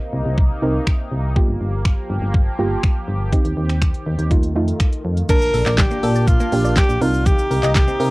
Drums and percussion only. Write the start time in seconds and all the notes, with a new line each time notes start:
0.38 kick
0.87 finger snap, kick
1.36 kick
1.85 finger snap, kick
2.34 kick
2.83 finger snap, kick
3.33 kick, closed hi-hat
3.45 closed hi-hat
3.70 finger snap, closed hi-hat
3.82 finger snap, kick, closed hi-hat
3.94 closed hi-hat
4.19 closed hi-hat
4.31 kick, closed hi-hat
4.43 closed hi-hat
4.68 closed hi-hat
4.80 finger snap, kick, closed hi-hat
4.93 closed hi-hat
5.17 closed hi-hat
5.29 kick, closed hi-hat, crash, shaker
5.42 shaker
5.54 open hi-hat, shaker
5.66 clap, shaker
5.78 kick, snare, clap, closed hi-hat, shaker
5.91 shaker
6.03 open hi-hat, shaker
6.15 shaker
6.27 kick, closed hi-hat, shaker
6.40 shaker
6.52 open hi-hat, shaker
6.65 shaker
6.76 kick, snare, clap, closed hi-hat, shaker
6.89 shaker
7.01 open hi-hat, shaker
7.13 shaker
7.26 kick, closed hi-hat, shaker
7.38 shaker
7.51 open hi-hat, shaker
7.63 clap, shaker
7.75 kick, snare, clap, closed hi-hat, shaker
7.87 shaker
8.00 open hi-hat, shaker